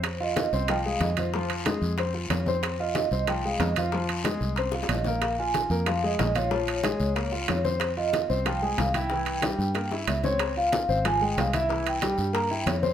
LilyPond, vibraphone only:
\new Staff \with { instrumentName = "Vibraphone" } { \time 4/4 \key f \minor \tempo 4 = 185 c''8 ees''4. g''8 f''8 ees''8 c''8~ | c''8 r2 r8 des''8 c''8~ | c''8 ees''4. g''8 f''8 ees''8 c''8~ | c''8 r2 r8 ees''8 f''8~ |
f''8 aes''4 r8 f''8 ees''4 des''8~ | des''2~ des''8 r8 des''8 c''8~ | c''8 ees''4 r8 g''8 aes''8 f''8 g''8~ | g''2~ g''8 r8 e''8 des''8~ |
des''8 f''4. aes''8 g''8 f''8 e''8~ | e''8 g''4. bes''8 g''8 des''8 c''8 | }